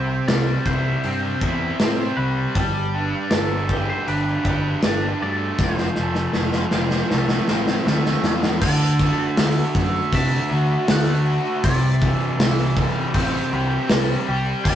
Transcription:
Already playing: C2 C3 C4 C5
0.28 C2 G3 D5, snare, open hi-hat
0.66 C2 E4 C5, kick
1.04 G2 C4, open hi-hat
1.41 E2 E4, kick
1.80 A2 C4, snare, open hi-hat
2.17 C2 G3 B4
2.55 G1 G3 A4, kick, open hi-hat
2.94 D4
3.30 G1 A3 D5, snare, open hi-hat
3.68 G4, kick
3.90 C5
4.06 G1 D4 B4, open hi-hat
4.44 G1 G4, kick
4.82 G1 D4, snare, open hi-hat
5.21 G2 A3 D5
5.58 F1 F3, kick, snare
5.64 C5
5.78 snare
5.96 F1 A3, snare
6.15 snare
6.33 F1 F3, snare
6.52 snare
6.71 F1 C4, snare
6.91 snare
7.09 C2 A3, snare
7.29 snare
7.47 A1 C4, snare
7.67 snare
7.86 D2 A3, snare
8.05 snare
8.23 E2 F3, snare
8.43 snare
8.61 D2 D3 D5, kick, crash
8.99 A3, kick
9.37 D2 D3, snare, open hi-hat
9.75 F#2 A3, kick
10.12 C3 D4 E5, kick, open hi-hat
10.49 D2 F#4
10.87 D2 A3, snare, open hi-hat
10.92 F#5
11.25 F#4
11.64 C2 C3 D5, kick, open hi-hat
12.01 E3, kick
12.40 C2 E3, snare, open hi-hat
12.77 G3, kick
13.14 A1 C4 C5, kick, open hi-hat
13.53 C2 G4
13.89 C2 G3, snare, open hi-hat
14.28 C2 G4
14.64 G1 G3 D5, kick, crash

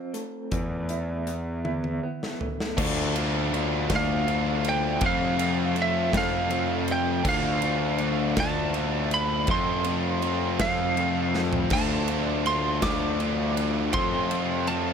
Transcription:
Already playing: F3 C4 F4
0.14 A3, closed hi-hat
0.51 E2 E3, kick, closed hi-hat
0.89 E4, closed hi-hat
1.27 B3, closed hi-hat
1.65 E4, high tom
1.84 high tom
2.03 B3
2.23 snare
2.40 A3, floor tom
2.60 snare
2.77 D2 D3 A3 D4 F4, kick, crash
3.15 A3 D4 F4, ride
3.51 D3 A3 D4 F4, ride
3.90 D2 A3 D4 F4, kick, snare, ride
3.94 D3 F5
4.26 D3 A3 D4 F4, ride
4.65 ride
4.69 G5
4.99 F2 F3 A3 C4, kick, ride
5.04 C3 F3 F4 F5
5.38 A3 C4 F4, ride
5.74 F3 A3 C4 F4, ride
5.82 E5
6.12 F2 F3 A3 C4 F4, kick, snare, ride
6.17 F5
6.49 F3 A3 C4 F4, ride
6.88 ride
6.92 G5
7.24 D2 D3 A3 D4 F4, kick, crash
7.29 F5
7.61 A3 D4 F4, ride
7.98 D3 A3 D4, ride
8.02 F4
8.36 D2 D3 A3 D4 F4, kick, snare, ride
8.40 A5
8.72 D3 A3 D4 F4, ride
9.11 B5, ride
9.47 F2 C3 F3 A3 C4 F4, kick, ride
9.51 F3 C6
9.84 A3 C4 F4, ride
9.88 F4
10.22 F3 A3 C4 F4, ride
10.59 F2 F3 A3 C4 F4 F5, kick, snare, ride
10.97 F3 A3 C4 F4, ride
11.34 snare
11.53 floor tom
11.70 D2 D3 A3 D4 A5, kick, crash
11.75 F4
12.08 D4 F4, ride
12.12 A3
12.44 D3 A3 D4 F4 C6, ride
12.82 D2 A3 D4 F4 D6, kick, snare, ride
12.86 D3
13.19 D3 A3 D4 F4, ride
13.57 ride
13.93 F2 C3 F3 A3 C4 C6, kick, ride
13.97 F4
14.31 A3 C4 F4, ride
14.67 F3 A3 C4 F4 A5, ride

